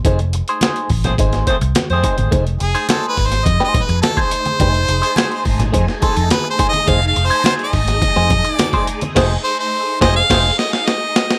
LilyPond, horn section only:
\new Staff \with { instrumentName = "Horn section" } { \time 4/4 \key c \dorian \tempo 4 = 105 r4. r16 <a c' gis' c''>16 r8 <a c' gis' c''>16 r8 <a c' gis' c''>8. | r1 | r1 | r1 |
<a c' gis' c''>8 r4 <a c' gis' c''>8 <a c' gis' c''>8 r4. | }